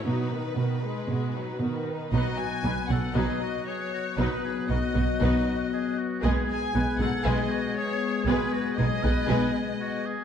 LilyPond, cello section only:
\new Staff \with { instrumentName = "Cello section" } { \clef bass \time 4/4 \key b \major \tempo 4 = 117 b,4 b,4 b,4 b,4 | b,8 r8 b,8 b,8 b,8 r4. | b,8 r8 b,8 b,8 b,8 r4. | b,8 r8 b,8 b,8 b,8 r4. |
b,8 r8 b,8 b,8 b,8 r4. | }